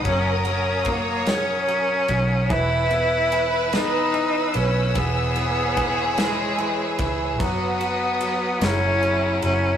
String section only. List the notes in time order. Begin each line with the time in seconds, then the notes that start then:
Already playing: F#5 D#6
0.04 A#4
2.52 B4 G#5 E6
4.98 C#5 B5
7.41 B4 F#5 D#6
8.64 G#4 A#5